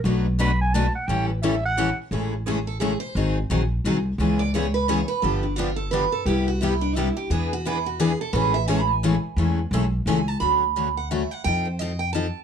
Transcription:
0.04 B1 B2 F#3 A3 D4 F#4 B4
0.39 B2 F#3 A3 D4 F#4 B4 B5
0.61 G#5
0.74 B2 F#3 A3 D4 F#4 B4 A5
0.95 F#5
1.07 A1 E3 G3 C#4 E4 A4 G5
1.28 B4
1.42 E3 G3 C#4 E4 A4 E5
1.65 F#5
1.78 E3 G3 C#4 E4 A4
2.11 A1 C#3 E3 G#3 A3 C#4 E4 G#4 A4
2.46 C#3 E3 G#3 A3 C#4 E4 G#4 A4
2.67 A4
2.80 C#3 E3 G#3 A3 C#4 E4 G#4 A4
3.00 C5
3.15 G#1 D#3 F#3 C4 D#4 G#4
3.50 A#1 D#3 F#3 C4 D#4 G#4
3.84 C2 D#3 F#3 C4 D#4 G#4
4.18 C#2 C#3 E3 G#3 B3 C#4 E4 G#4
4.39 D5
4.54 C#3 E3 G#3 B3 C#4 E4 G#4 C#5
4.74 B4
4.88 C#3 E3 G#3 B3 C#4 E4 G#4 C#5
5.08 B4
5.22 G1 D3 F3 B3 D4 G4 A4
5.43 D4
5.56 D3 F3 B3 D4 F4 G4
5.76 A4
5.91 D3 F3 B3 D4 G4 B4
6.12 A4
6.25 C2 C3 G3 B3 E4 G4
6.48 F#4
6.61 C3 G3 B3 E4 G4
6.81 D4
6.95 C3 G3 B3 E4 G4
7.17 G4
7.30 E2 E3 B3 D4 G#4 B4
7.53 F#4
7.65 E3 B3 D4 E4 G#4 B4
7.86 F#4
8.00 E3 B3 D4 G#4 B4
8.21 A4
8.33 A1 C#3 E3 G#3 A3 C#4 E4 G#4 A4 B4
8.54 E5
8.68 C#3 E3 G#3 A3 C#4 E4 G#4 A4 G#5
8.80 B5
8.91 G#5
9.03 C#3 E3 G#3 A3 C#4 E4 G#4 A4
9.36 E2 C#3 E3 G#3 A3 C#4 E4 G#4 A4
9.71 B1 C#3 E3 G#3 A3 C#4 E4 G#4 A4
10.06 C#2 C#3 E3 G#3 A3 C#4 E4 G#4 A4 G#5
10.28 A5
10.40 D2 D3 F#3 A3 C#4 F#4 B5
10.76 D3 F#3 A3 C#4 F#4
10.97 F#5
11.11 D3 F#3 A3 C#4 F#4 E5
11.31 F#5
11.44 F2 F3 C4 D#4 A4 G5
11.65 C5
11.79 F3 C4 D#4 A4 D#5
11.99 G5
12.13 F3 C4 D#4 A4 A5

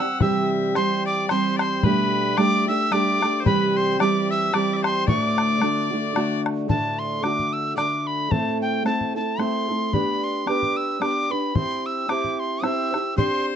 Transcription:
Already playing: G4 E6
0.00 G3 C4 F#5
0.21 C3 E3 G3 C4 G4 E5 E6, bodhran
0.75 E3 G3 C4 G4 C5 C6, bodhran
1.06 D5 D6
1.29 E3 G3 C4 G4 C5 C6, bodhran
1.57 D5 C6, bodhran
1.61 C5
1.83 B2 G3 A3 D4 G4 B4 B5, bodhran
2.37 G3 A3 D4 G4 D5 D6, bodhran
2.67 A3 D4 G4 E5 E6
2.90 G3 A3 D4 G4 D5 D6, bodhran
3.21 A3 G4, bodhran
3.40 C5
3.45 C3 E3 G3 C4 G4 B4 B5, bodhran
3.77 C5 C6
3.99 E3 G3 C4 G4 D5 D6, bodhran
4.31 E5 E6
4.53 E3 G3 C4 G4 D5 D6, bodhran
4.73 D5 E5
4.83 C5 C6, bodhran
5.06 D2 A2 D3 A3 D4 F#4 D5 C#6, bodhran
5.23 D6
5.38 bodhran
5.60 D3 A3 D4 F#4, bodhran
5.91 D3 A3 D4 F#4
6.14 D3 A3 D4 F#4, bodhran
6.46 bodhran
6.68 D2 A2 D3 A3 D4 F#4 A5, bodhran
6.99 C6
7.23 D3 A3 D4 F#4 D6, bodhran
7.39 bodhran
7.53 E6
7.77 D3 A3 D4 F#4 D6, bodhran
8.07 B5
8.30 A2 A3 C4 E4 A4 A5, bodhran
8.62 G5
8.84 A3 C4 E4 A4 A5, bodhran
9.01 bodhran
9.15 C4 E4 A4 A5
9.38 A3 C4 E4 A4 C6, bodhran
9.69 C4 E4 A4
9.92 B3 D4 G4 B4 B5, bodhran
10.24 C6
10.46 B3 D4 G4 B4 D6, bodhran
10.63 bodhran
10.77 E6
11.00 B3 D4 G4 B4 D6, bodhran
11.30 D4 G4 B4 B5
11.55 C4 E4 G4 C5 C6, bodhran
11.86 E6
12.08 C4 E4 G4 C5 D6, bodhran
12.24 bodhran
12.39 C6
12.62 C4 E4 G4 C5 E6, bodhran
12.92 E4 G4 C5, bodhran
13.16 C4 D4 G4 C5 C6, bodhran

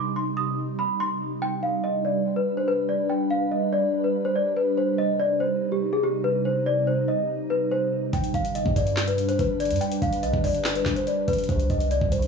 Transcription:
Already playing: C3 G3 D#4 D6
0.16 C6
0.37 D#6
0.79 B5
1.00 C6
1.42 G3 D4 B4 G5
1.63 F5
1.84 D#5
2.05 D5
2.36 B4
2.57 C5
2.68 B4
2.89 D5
3.10 G5
3.30 F5
3.51 D#5
3.73 D5
4.04 B4
4.25 C5
4.36 D5
4.57 B4
4.77 C3 D#4 C5
4.98 D#5
5.20 D5
5.40 C5
5.72 G4
5.93 G#4
6.03 G4
6.24 B4
6.45 C5
6.66 D5
6.87 C5
7.08 D#5
7.50 B4
7.72 C5
8.13 G1 G3 D4 B4 G5, kick, closed hi-hat
8.24 closed hi-hat
8.34 G1 F5, kick, closed hi-hat
8.45 closed hi-hat
8.55 D#5, closed hi-hat
8.66 G2, kick
8.76 D5, kick, closed hi-hat
8.87 closed hi-hat
8.96 snare, clap, closed hi-hat
9.08 B4, closed hi-hat
9.18 closed hi-hat
9.29 C5, closed hi-hat
9.39 G1 B4, kick, closed hi-hat
9.60 D5, closed hi-hat
9.65 closed hi-hat
9.71 G2, closed hi-hat
9.76 closed hi-hat
9.81 G5, closed hi-hat
9.92 closed hi-hat
10.02 G1 F5, kick, closed hi-hat
10.13 closed hi-hat
10.23 B1 D#5, closed hi-hat
10.34 G1, kick
10.44 D5, kick, open hi-hat
10.55 closed hi-hat
10.64 snare, clap, closed hi-hat
10.75 B4, closed hi-hat
10.85 G1, kick, snare, clap, closed hi-hat
10.96 C5, closed hi-hat
11.07 D5, closed hi-hat
11.28 G1 B4, kick, closed hi-hat
11.33 closed hi-hat
11.38 closed hi-hat
11.44 closed hi-hat
11.49 C2 C3 D#4 C5, kick, closed hi-hat
11.59 closed hi-hat
11.70 C2 D#5, kick, closed hi-hat
11.80 closed hi-hat
11.91 D5, closed hi-hat
12.01 C2, kick
12.12 C5, kick, closed hi-hat
12.22 closed hi-hat

